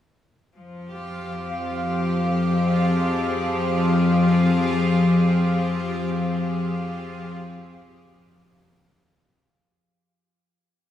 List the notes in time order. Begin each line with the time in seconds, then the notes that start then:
0.53 F2 F3 F4 F5
0.89 G4
1.33 C4
2.51 G#4